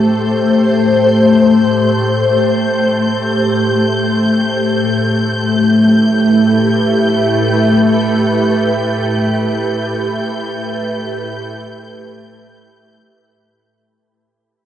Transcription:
Already playing: ambient pad A2 A3 G4 C5, violin section G6
4.73 ambient pad A2, synth drone A3 E4
5.05 ambient pad G4
5.51 ambient pad B4

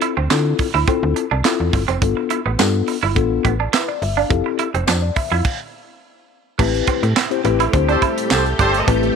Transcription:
Already playing: tine electric piano C4 E4 F4 A4
0.02 clean electric guitar E4, closed hi-hat
0.17 fm bass D2, clean electric guitar C4
0.30 fm bass D3, tine electric piano C4 E4 F4 A4, clean electric guitar D4, snare, clap, closed hi-hat, tambourine
0.59 muted clean electric guitar stroke, kick, open hi-hat
0.74 fm bass D2, clean electric guitar E4
0.87 tine electric piano C4 E4 F4 A4, clean electric guitar C4, kick, closed hi-hat
1.03 fm bass D2
1.16 muted clean electric guitar stroke, closed hi-hat
1.31 fm bass C2, clean electric guitar D4
1.44 tine electric piano C4 E4 F4 A4, clean electric guitar E4, snare, clap, closed hi-hat, tambourine
1.60 fm bass E2
1.73 fm bass G1, muted clean electric guitar stroke, kick, open hi-hat
1.88 fm bass F1, clean electric guitar C4, closed hi-hat
2.01 fm bass G1, tine electric piano B3 D4 F4 A4, kick, closed hi-hat
2.17 muted clean electric guitar stroke
2.30 clean electric guitar E4, closed hi-hat
2.46 fm bass A1, clean electric guitar B3
2.59 fm bass G2, tine electric piano B3 D4 F4 A4, clean electric guitar D4, snare, clap, closed hi-hat, tambourine
2.88 muted clean electric guitar stroke, open hi-hat
3.03 fm bass G1, clean electric guitar E4
3.15 fm bass A1, tine electric piano B3 D4 F4 A4, muted clean electric guitar stroke, kick, closed hi-hat
3.45 fm bass A1, clean electric guitar B3, kick, closed hi-hat
3.60 clean electric guitar D4
3.73 clean electric guitar E4, tine electric piano B4, snare, clap, closed hi-hat, tambourine
3.88 tine electric piano D5, muted clean electric guitar stroke
4.02 fm bass G1, tine electric piano E5, open hi-hat
4.17 clean electric guitar D4, tine electric piano F5
4.29 fm bass F1, tine electric piano C4 E4 G4 A4, kick, closed hi-hat
4.46 muted clean electric guitar stroke
4.59 clean electric guitar E4, closed hi-hat
4.74 fm bass F1, clean electric guitar C4, closed hi-hat
4.87 fm bass F2, clean electric guitar D4, tine electric piano C5, snare, clap, closed hi-hat, tambourine
5.02 tine electric piano D5
5.16 tine electric piano E5, muted clean electric guitar stroke, kick, open hi-hat
5.31 fm bass F2, clean electric guitar E4, tine electric piano F5
5.45 kick, crash
6.59 fm bass A1, string machine A3 C4 G4, clean electric guitar A3, tine electric piano C4 E4 G4 B4, kick, crash
6.74 closed hi-hat
6.87 clean electric guitar C4, kick, closed hi-hat
7.03 fm bass A2, muted clean electric guitar stroke, closed hi-hat
7.16 clean electric guitar E4, snare, clap, tambourine
7.31 tine electric piano C4 E4 G4 C5, closed hi-hat
7.44 fm bass A1, tine electric piano C4 E4 G4 B4, muted clean electric guitar stroke, closed hi-hat
7.60 clean electric guitar E4, closed hi-hat
7.73 fm bass D2, tine electric piano C4 E4 G4 C5, muted clean electric guitar stroke, kick, closed hi-hat
7.89 clean electric guitar D4, horn section G4 A4 C5, closed hi-hat
8.02 clean electric guitar E4, kick, closed hi-hat
8.18 closed hi-hat
8.30 fm bass C2, horn section G4 A4 C5, snare, clap, tambourine
8.46 closed hi-hat
8.59 fm bass G1, clean electric guitar D4, horn section G4 A4 C5, kick, closed hi-hat
8.74 closed hi-hat
8.87 fm bass A1, clean electric guitar A3, tine electric piano C4 E4 G4 B4, kick, closed hi-hat
9.03 closed hi-hat

